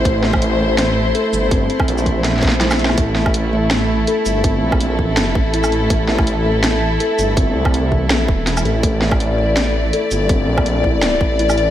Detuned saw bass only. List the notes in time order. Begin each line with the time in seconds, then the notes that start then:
0.05 A1
1.33 G1
1.88 A#1
2.98 A1
4.26 G1
4.62 A#1
5.35 A1
5.90 A1
7.19 G1
7.55 C2
8.06 B1
8.28 E1
8.65 A1
8.83 A1
10.11 G1
10.48 A#1
11.21 A1